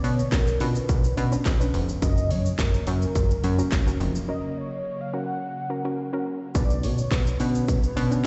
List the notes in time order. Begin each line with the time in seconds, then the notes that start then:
Already playing: D3 B3 C#4 D4 B4 C#5
0.04 B2 C#5, open hi-hat, shaker
0.19 shaker
0.32 B1 A#4, kick, snare, clap, closed hi-hat, shaker
0.47 shaker
0.60 B2 C#4 D4 F4 B4, open hi-hat, shaker
0.75 shaker
0.89 B1, kick, closed hi-hat, shaker
1.04 shaker
1.17 B2 C#4 D4 B4, open hi-hat, shaker
1.32 C#4 D4 B4, shaker
1.46 B1, kick, snare, clap, closed hi-hat, shaker
1.60 C#4 D4 B4, shaker
1.74 F1, open hi-hat, shaker
1.89 shaker
2.02 F#1 C#3 F#3 A#3 C#4 F#4 A#4 D#5, kick, closed hi-hat, shaker
2.17 shaker
2.31 F#2 C#5, open hi-hat, shaker
2.45 shaker
2.59 F#1 A#4, kick, snare, clap, closed hi-hat, shaker
2.74 shaker
2.87 F#2 C#4 F#4 A#4, open hi-hat, shaker
3.02 shaker
3.15 F#1, kick, closed hi-hat, shaker
3.30 shaker
3.44 F#2 C#4 F#4 A#4, open hi-hat, shaker
3.58 C#4 F#4 A#4, shaker
3.72 F#1, kick, snare, clap, closed hi-hat, shaker
3.87 C#4 F#4 A#4, shaker
4.00 F1, open hi-hat, shaker
4.15 shaker
4.28 C#4 F#4 A#4 D#5
4.58 C#5
5.00 F5
5.13 C#4 F#4 A#4 F#5
5.70 C#4 F#4 A#4
5.85 C#4 F#4 A#4
6.13 C#4 F#4 A#4
6.54 B1 D3 B3 C#4 D4 B4 C#5 D5, kick, closed hi-hat, shaker
6.70 shaker
6.83 B2 C#5, open hi-hat, shaker
6.98 shaker
7.11 B1 B4, kick, snare, clap, closed hi-hat, shaker
7.26 shaker
7.40 B2 C#4 D4 B4, open hi-hat, shaker
7.55 shaker
7.68 B1, kick, closed hi-hat, shaker
7.83 shaker
7.96 B2 C#4 D4 B4, open hi-hat, shaker
8.11 C#4 D4 B4, shaker